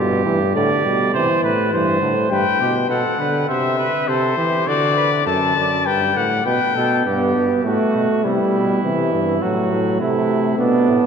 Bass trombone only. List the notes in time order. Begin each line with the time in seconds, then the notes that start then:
Already playing: G2
0.26 G2
0.55 A2
0.84 B2
1.14 C3
1.43 A2
1.73 G2
2.02 A2
2.31 G2
2.60 B2
2.89 B2
3.19 D3
3.49 C3
4.08 C3
4.37 E3
4.67 D3
5.26 F#2
5.56 F#2
5.86 G2
6.16 A2
6.46 B2
6.76 B2
7.06 G2
7.35 G2
7.65 A2
7.95 B2
8.25 C3
8.54 B2
8.83 C3
9.13 G2
9.42 A2
9.72 A2
10.01 C3
10.59 B2
10.88 A2